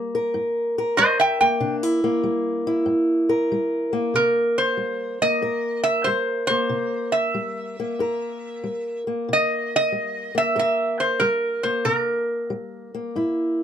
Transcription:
Already playing: steel-string acoustic guitar G3 A#3
0.15 steel-string acoustic guitar A#4
0.34 steel-string acoustic guitar G2
0.78 steel-string acoustic guitar A#4
0.97 steel-string acoustic guitar G3, resonator guitar played with a steel bar C5 D#5
1.20 resonator guitar played with a steel bar E5 G5
1.41 steel-string acoustic guitar A#3, resonator guitar played with a steel bar G5
1.60 steel-string acoustic guitar C3 D4
1.83 steel-string acoustic guitar E4
2.04 steel-string acoustic guitar A#3
2.24 steel-string acoustic guitar G3
2.67 steel-string acoustic guitar E4
2.86 steel-string acoustic guitar G2
3.29 steel-string acoustic guitar A#4
3.52 steel-string acoustic guitar G3
3.93 steel-string acoustic guitar A#3
4.14 steel-string acoustic guitar C3, resonator guitar played with a steel bar A#4
4.58 resonator guitar played with a steel bar C5
4.77 steel-string acoustic guitar G3
5.22 steel-string acoustic guitar A#3, resonator guitar played with a steel bar D#5
5.42 steel-string acoustic guitar G2 A#4
5.84 resonator guitar played with a steel bar E5
6.04 steel-string acoustic guitar G3, resonator guitar played with a steel bar C5
6.47 steel-string acoustic guitar A#3, resonator guitar played with a steel bar C5
6.69 steel-string acoustic guitar C3
7.12 resonator guitar played with a steel bar E5
7.34 steel-string acoustic guitar G3
7.80 steel-string acoustic guitar A#3
7.99 steel-string acoustic guitar G2 A#4
8.64 steel-string acoustic guitar G3
9.07 steel-string acoustic guitar A#3
9.29 steel-string acoustic guitar C3
9.33 resonator guitar played with a steel bar D#5
9.76 resonator guitar played with a steel bar D#5
9.92 steel-string acoustic guitar G3
10.35 steel-string acoustic guitar A#3, resonator guitar played with a steel bar E5
10.55 steel-string acoustic guitar G2 A#4
10.59 resonator guitar played with a steel bar E5
11.00 resonator guitar played with a steel bar C5
11.20 steel-string acoustic guitar G3, resonator guitar played with a steel bar A#4
11.63 steel-string acoustic guitar A#3, resonator guitar played with a steel bar C5
11.85 steel-string acoustic guitar C3, resonator guitar played with a steel bar A#4
12.50 steel-string acoustic guitar G3
12.95 steel-string acoustic guitar A#3
13.16 steel-string acoustic guitar G2 E4

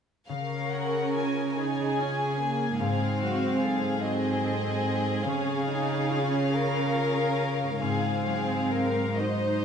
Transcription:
0.28 cello section C#3, harp C#3, viola section C#4, violin section A#4 F5
0.72 harp C#4, violin section F#5
1.13 harp F4, violin section G#5
1.56 viola section D#4, violin section G#4 G#5, harp C#5
1.98 viola section C#4, harp F4
2.40 viola section A#3, harp G#4
2.78 cello section G#2, harp G#2, violin section G#4 F5
2.82 viola section C4
3.20 harp F#3, violin section F#4
3.62 violin section G#4, harp A4
4.04 viola section C4, harp F#4, violin section D#5
4.45 harp A4
4.86 harp C4
5.24 harp C#3, cello section C#3, viola section C#4, violin section F5
5.68 harp C#4, viola section D#4
6.10 viola section C#4, harp F4
6.50 violin section A#4, harp C#5
6.95 harp F4
7.39 harp G#4
7.81 cello section G#2, harp G#2, viola section C4, violin section G#4 F5
8.25 harp F#3, violin section G#4
8.69 harp G#4, violin section A#4
9.16 viola section D#4, harp F#4, violin section C5 D#5

